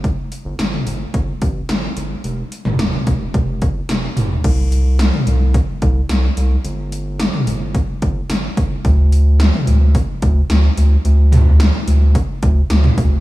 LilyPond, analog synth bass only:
\new Staff \with { instrumentName = "Analog synth bass" } { \clef bass \time 4/4 \key d \dorian \tempo 4 = 109 g,,8 r16 g,,16 g,,8 g,,8 g,,8 a,,8 g,,8 g,,8 | f,,8 r16 f,,16 f,,8 f,,8 f,,8 g,,8 f,,8 f,,8 | c,4~ c,16 r16 c,8. r16 c,8 c,8 c,8 | g,,4~ g,,16 r16 g,,8. r16 g,,8 g,,8 g,,8 |
d,4~ d,16 r16 d,8. r16 d,8 d,8 d,8 | d,4~ d,16 r16 d,8. r16 d,8 d,8 d,8 | }